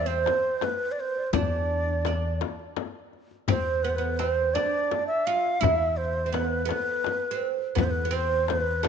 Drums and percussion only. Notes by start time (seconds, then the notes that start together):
0.26 darbuka tek, frame drum
0.61 darbuka tek, frame drum
1.16 darbuka ka
1.33 darbuka dum, frame drum
1.71 darbuka ka
2.05 darbuka tek, frame drum
2.41 darbuka tek, frame drum
2.59 darbuka ka
2.77 darbuka tek, frame drum
3.13 darbuka ka
3.31 darbuka ka
3.48 darbuka dum, frame drum
4.20 darbuka tek
4.56 darbuka tek, frame drum
4.91 darbuka tek, frame drum
5.27 darbuka ka
5.45 darbuka ka
5.63 darbuka dum, frame drum
6.34 darbuka tek, frame drum
6.69 darbuka tek, frame drum
7.04 darbuka tek, frame drum
7.41 darbuka ka
7.58 darbuka ka
7.76 darbuka dum, frame drum
8.48 darbuka tek, frame drum
8.84 darbuka tek, frame drum